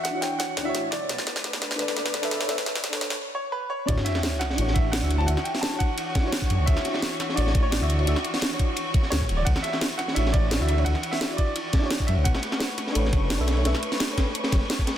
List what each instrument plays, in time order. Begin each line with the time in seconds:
Already playing: string section E3 D4 F#4 C#6
0.03 grand piano F#5, snare, closed hi-hat
0.11 fm electric piano D4 E4
0.15 fm electric piano F#4 C#5
0.21 grand piano G5, snare, closed hi-hat
0.39 grand piano F#5, snare, closed hi-hat
0.57 detuned saw bass D2, snare, closed hi-hat
0.63 fm electric piano D4 E4, grand piano E5
0.67 fm electric piano F#4 C#5
0.75 detuned saw bass A1, snare, closed hi-hat
0.91 detuned saw bass D1, grand piano D5, snare, closed hi-hat
1.09 detuned saw bass B1, string section A3 B3 D4 B4, snare, closed hi-hat
1.18 snare
1.27 snare, closed hi-hat
1.36 snare
1.44 snare, closed hi-hat
1.53 snare
1.62 snare, closed hi-hat
1.71 snare
1.76 detuned saw bass A1, fm electric piano D4 A4, snare, closed hi-hat
1.80 fm electric piano B4 D5
1.88 snare
1.97 detuned saw bass F#1, snare, closed hi-hat
2.06 snare
2.14 snare, closed hi-hat
2.22 detuned saw bass B1, fm electric piano D4 A4 B4 E5, snare
2.31 snare, closed hi-hat
2.39 fm electric piano D4 A4 B4 C#5, snare
2.47 detuned saw bass B1, fm electric piano D4 A4 B4 E5, snare, closed hi-hat
2.58 snare
2.66 snare, closed hi-hat
2.76 snare
2.84 snare, closed hi-hat
2.90 fm electric piano D4 A4, snare
2.94 fm electric piano B4 C#5
3.01 snare, closed hi-hat
3.10 snare
3.35 grand piano C#5
3.52 grand piano B4
3.70 grand piano C#5
3.85 detuned saw bass D2, string section E3 D4 F#4 C#6, fm electric piano D4 E4, grand piano D5, kick, closed hi-hat, ride, sub drop
3.90 fm electric piano F#4 C#5
3.98 snare
4.05 grand piano E5, snare, closed hi-hat, ride
4.15 snare
4.23 snare, closed hi-hat, ride
4.39 grand piano F#5, snare, closed hi-hat, ride
4.50 snare
4.55 detuned saw bass A1, fm electric piano D4 E4, closed hi-hat, ride
4.59 fm electric piano F#4 C#5
4.68 snare
4.74 detuned saw bass A1, grand piano E5, kick, closed hi-hat, ride
4.92 grand piano F#5, snare, closed hi-hat, ride
5.01 detuned saw bass D2, fm electric piano D4 E4 F#4 E5, snare
5.10 closed hi-hat, ride
5.18 fm electric piano D4 E4 F#4 C#5, grand piano A5, ride
5.26 detuned saw bass D2, fm electric piano D4 E4 F#4 E5, grand piano F#5, closed hi-hat, ride
5.37 snare
5.44 grand piano G5, closed hi-hat, ride
5.55 snare
5.61 grand piano A5, snare, closed hi-hat, ride
5.69 fm electric piano D4 E4, ride
5.73 fm electric piano F#4 C#5
5.79 grand piano F#5, kick, closed hi-hat, ride
5.98 closed hi-hat, ride
6.15 kick, snare, closed hi-hat, ride
6.21 fm electric piano D4 E4, snare
6.25 fm electric piano F#4 C#5
6.32 snare, closed hi-hat
6.42 kick, snare
6.50 detuned saw bass F#2, closed hi-hat, ride
6.59 detuned saw bass D2
6.66 detuned saw bass D2, grand piano E5, kick, closed hi-hat, ride
6.77 snare
6.85 snare, closed hi-hat, ride
6.94 snare
7.02 snare, closed hi-hat, ride
7.20 snare, closed hi-hat, ride
7.29 snare
7.34 detuned saw bass A1, fm electric piano D4 E4, grand piano D5, closed hi-hat, ride
7.38 fm electric piano F#4 C#5
7.47 snare
7.55 detuned saw bass A1, kick, closed hi-hat, ride
7.63 grand piano C#5
7.71 grand piano D5, snare, closed hi-hat, ride
7.80 detuned saw bass D2, fm electric piano D4 E4 F#4 E5, snare
7.89 closed hi-hat, ride
7.97 fm electric piano D4 E4 F#4 C#5, ride
8.05 detuned saw bass D2, fm electric piano D4 E4 F#4 E5, string section E4, closed hi-hat, ride
8.16 snare
8.24 closed hi-hat, ride
8.34 snare
8.41 snare, closed hi-hat, ride
8.48 fm electric piano D4 E4, ride
8.52 fm electric piano F#4 C#5
8.59 kick, closed hi-hat, ride
8.76 closed hi-hat, ride
8.94 kick, closed hi-hat, ride
9.03 snare
9.10 detuned saw bass D2, grand piano C#5, snare, closed hi-hat, ride
9.21 detuned saw bass A1, kick, snare
9.29 detuned saw bass D1, closed hi-hat, ride
9.37 grand piano D5
9.45 detuned saw bass D2, grand piano F#5, kick, closed hi-hat, ride
9.56 snare
9.63 grand piano E5, snare, closed hi-hat, ride
9.73 snare
9.81 snare, closed hi-hat, ride
9.98 grand piano F#5, snare, closed hi-hat, ride
10.08 snare
10.13 detuned saw bass A1, fm electric piano D4 E4, grand piano E5, closed hi-hat, ride
10.17 fm electric piano F#4 C#5
10.26 snare
10.32 detuned saw bass A1, grand piano D5, kick, closed hi-hat, ride
10.51 snare, closed hi-hat, ride
10.59 detuned saw bass D2, fm electric piano D4 E4 F#4 E5, snare
10.67 grand piano E5, closed hi-hat, ride
10.76 fm electric piano D4 E4 F#4 C#5, ride
10.84 detuned saw bass D2, fm electric piano D4 E4 F#4 E5, grand piano F#5, closed hi-hat, ride
10.95 snare
11.03 closed hi-hat, ride
11.11 grand piano E5, snare
11.21 snare, closed hi-hat, ride
11.27 fm electric piano D4 E4, ride
11.31 fm electric piano F#4 D5
11.37 grand piano D5, kick, closed hi-hat, ride
11.56 closed hi-hat, ride
11.73 kick, snare, closed hi-hat, ride
11.79 fm electric piano D4 E4, snare
11.83 fm electric piano F#4 C#5
11.91 snare, closed hi-hat, ride
12.00 kick, snare
12.07 detuned saw bass F#2, grand piano E5, closed hi-hat, ride
12.17 detuned saw bass D2
12.24 detuned saw bass B1, string section A3 D4 B4 C#6, grand piano F#5, kick, closed hi-hat, ride
12.35 snare
12.43 snare, closed hi-hat, ride
12.52 snare
12.60 snare, closed hi-hat, ride
12.78 snare, closed hi-hat, ride
12.87 snare
12.92 detuned saw bass A1, fm electric piano D4 A4, closed hi-hat, ride
12.96 fm electric piano B4 C#5
13.05 snare
13.13 detuned saw bass F#1, kick, closed hi-hat, ride
13.30 snare, closed hi-hat, ride
13.38 detuned saw bass B1, fm electric piano D4 A4 B4 E5, snare
13.47 snare, closed hi-hat, ride
13.55 fm electric piano D4 A4 B4 C#5, ride
13.64 detuned saw bass B1, fm electric piano D4 A4 B4 E5, snare, closed hi-hat, ride
13.74 snare
13.83 closed hi-hat, ride
13.92 snare
14.00 snare, closed hi-hat, ride
14.06 fm electric piano D4 A4, ride
14.10 fm electric piano B4 C#5
14.18 kick, snare, closed hi-hat, ride
14.35 closed hi-hat, ride
14.44 snare, ride
14.52 detuned saw bass F#1, kick, snare, closed hi-hat, ride
14.70 snare, closed hi-hat, ride
14.79 kick, snare
14.87 snare, closed hi-hat, ride